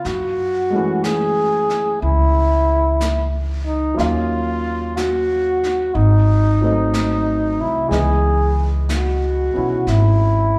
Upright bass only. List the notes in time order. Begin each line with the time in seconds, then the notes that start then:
0.05 F#2
2.02 C#2
3.99 D#2
5.95 G#1
7.59 C2
7.91 C#2
9.56 B1
9.87 G#1